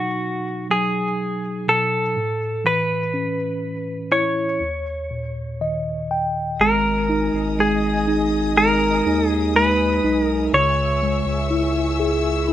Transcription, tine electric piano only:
Already playing: B2 F#3 D#4
0.70 F#3
1.68 B2
2.16 A2
2.64 E3
3.14 C#4
4.12 E4
4.61 D#2
5.11 A#2
5.61 D#3 D#5
6.11 G5
6.61 G#3
7.09 D#4
7.59 G#3
8.08 D#4
8.58 G#3
9.07 D#4
9.55 G#3
10.04 D#4
10.54 C#3
11.03 G#3
11.50 E4
12.00 G#4
12.48 E4

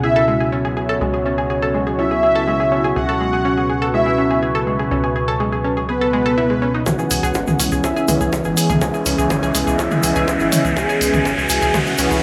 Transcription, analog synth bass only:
Already playing: C#2
1.01 C#2
2.96 C#2
4.91 C#2
6.86 C#2
7.11 C#2
7.23 C#2
7.35 G#1
7.48 C#2
7.59 C#2
7.72 C#2
7.84 C#2
8.08 C#2
8.21 C#2
8.33 C#2
8.45 G#1
8.70 C#2
8.82 C#2
9.06 C#2
9.18 C#2
9.30 G#1
9.43 C#2
9.55 C#2
9.67 C#2
9.79 C#2
10.04 C#2
10.16 C#2
10.28 C#2
10.40 G#1
10.65 C#2
10.77 C#2
11.01 C#2
11.13 C#2
11.25 G#1
11.38 C#2
11.50 C#2
11.62 C#2
11.74 C#2
11.99 C#2
12.11 C#2

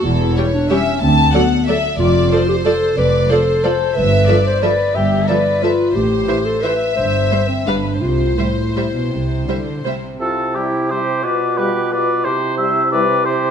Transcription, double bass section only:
0.05 E1
1.02 D2
1.99 F1
2.97 F1
3.96 G1
4.95 G1
5.95 A1
6.97 G1
7.67 G1
8.02 C2
9.13 C2

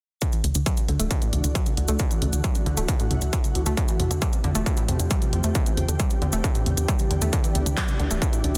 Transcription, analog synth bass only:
0.44 D2
0.55 D2
0.89 D2
1.00 D1
1.33 D2
1.44 D2
1.77 D2
1.89 D2
2.22 D2
2.33 D2
2.66 D2
2.77 D1
3.11 D2
3.22 D2
3.55 D2
3.66 D2
4.00 F2
4.11 F2
4.44 F2
4.55 F1
4.89 F2
5.00 F2
5.33 F2
5.44 F2
5.77 E2
5.88 E2
6.22 E2
6.33 E1
6.66 E2
6.77 E2
7.11 E2
7.22 E2
7.55 D2
7.66 D2
8.00 D2
8.11 D1
8.44 D2

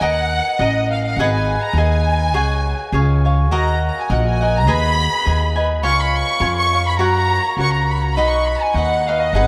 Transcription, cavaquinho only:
0.01 A#4 D#5 F#5 A#5
0.60 A#4 D#5 F#5 A#5
1.19 G#4 B4 D#5 G#5
1.77 G#4 B4 D#5 G#5
2.34 G#4 C#5 F#5 G#5
2.93 G#4 C#5 F5 G#5
3.25 C#5 F5 G#5
3.51 F#4 A#4 D#5 F#5
4.10 F#4 A#4 D#5 F#5
4.41 A#4 D#5 F#5
4.67 G#4 B4 D#5 G#5
5.24 G#4 B4 D#5 G#5
5.56 B4 D#5 G#5
5.83 F4 C#5 F5 G#5
6.40 F4 C#5 F5 G#5
6.73 C#5 F5 G#5
6.99 F#4 A#4 C#5 F#5
7.58 F#4 A#4 C#5 F#5
8.17 D#4 B4 D#5 F#5
8.76 D#4 B4 D#5 F#5
9.08 B4 D#5 F#5
9.35 D#4 G#4 B4 F#5

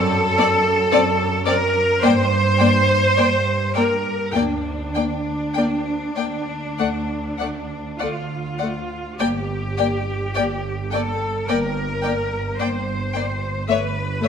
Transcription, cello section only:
Already playing: A4
1.46 A#4
2.02 C5
3.75 A#4
4.33 D4
8.00 F4
9.21 G4
10.92 A4
11.48 A#4
12.59 C5
13.69 B4

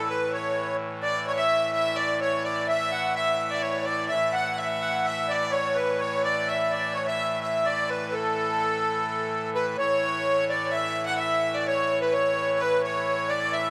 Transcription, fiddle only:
0.06 B4
0.30 C#5
1.03 D5
1.27 C#5
1.38 E5
1.73 E5
1.96 D5
2.21 C#5
2.45 D5
2.68 E5
3.16 E5
3.48 D5 E5
3.62 C#5
3.85 D5
4.09 E5
4.34 F#5
4.52 F#5
4.58 E5
5.07 E5
5.31 D5
5.53 C#5
6.01 C#5
6.25 D5
6.49 E5
6.97 C#5
7.08 E5
7.44 E5
7.67 D5
7.90 B4
8.15 A4
9.55 B4
9.79 C#5
10.71 E5
11.06 F#5
11.18 E5
11.54 D5
11.67 C#5
12.02 B4
12.13 C#5
12.60 B4
12.84 C#5
13.09 C#5
13.30 D5
13.54 E5

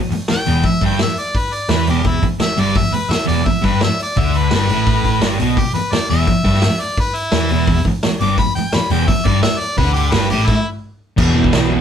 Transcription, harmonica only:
0.31 G5
0.66 E5
0.86 G5
1.02 E5
1.18 D5
1.37 B4
1.53 D5
1.70 B4
1.90 G4
2.07 E4
2.42 E5
2.60 D5
2.78 E5
2.94 B4
3.11 E5
3.28 D5
3.46 E5
3.65 B4
3.84 E5
4.03 D5
4.18 E5
4.37 B4
4.55 B4
5.58 G4
5.74 B4
5.93 D5
6.10 E5
6.80 D5
7.00 B4
7.15 E4
8.21 D6
8.39 B5
8.55 G5
8.75 B5
8.91 G5
9.08 E5
9.26 D5
9.43 E5
9.59 D5
9.78 B4
9.94 G4
10.13 B4
10.31 G4
10.47 E4

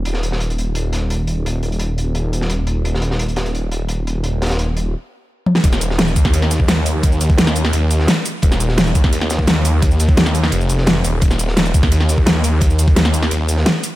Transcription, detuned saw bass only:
0.06 D#1
5.64 D#1
6.16 D#2
6.34 D#2
7.21 D#2
7.73 D#2
8.43 D#1
8.95 D#2
9.13 D#2
10.00 D#2
10.52 F1
11.04 D#1
11.22 D#1
11.74 D#2
11.92 D#2
12.79 D#2
13.31 D#2

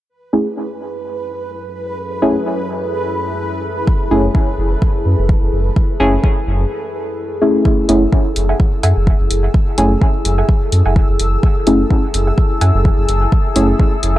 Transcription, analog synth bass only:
4.11 F#1
4.58 F#1
5.05 F#2
5.19 F#1
5.42 F#1
5.53 F#1
6.00 F#1
6.47 F#1
7.89 F#1
8.36 F#1
8.83 F#2
8.96 F#1
9.20 F#1
9.31 F#1
9.78 F#1
10.25 F#1
10.72 F#2
10.86 F#1
11.09 F#1
11.20 F#1
11.67 F#1
12.14 F#1
12.61 F#2
12.74 F#1
12.98 F#1
13.09 F#1
13.56 F#1
14.03 F#1

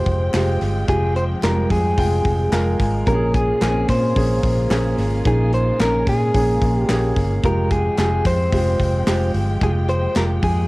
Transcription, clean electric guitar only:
Already playing: C5
0.89 G#4
1.16 C5
1.44 A#4
1.71 G#4
3.08 A#4
3.35 G#4
3.63 G#4
3.90 C5
5.27 G#4
5.54 C5
5.81 A#4
6.09 G#4
6.78 G4
7.46 A#4
7.72 G#4
7.99 G#4
8.27 C5
9.63 G#4
9.89 C5
10.17 A#4
10.44 G#4

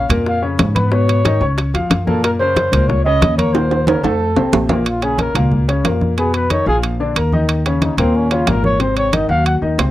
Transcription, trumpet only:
0.28 F5
0.86 B4
0.92 C#5
2.07 A4
2.24 A#4
2.39 C5
2.88 C#5
3.05 D#5
3.37 C#5
3.53 C5
3.88 A#4
4.04 A4
4.87 F4
5.03 G#4
5.20 A#4
5.36 F4
6.18 G#4
6.35 B4
6.51 C#5
6.68 G#4
7.82 D#4
7.98 C4
8.16 C#4
8.32 F4
8.49 A#4
8.65 C#5
8.81 C5
8.98 C#5
9.14 D#5
9.30 F5
9.46 F#5

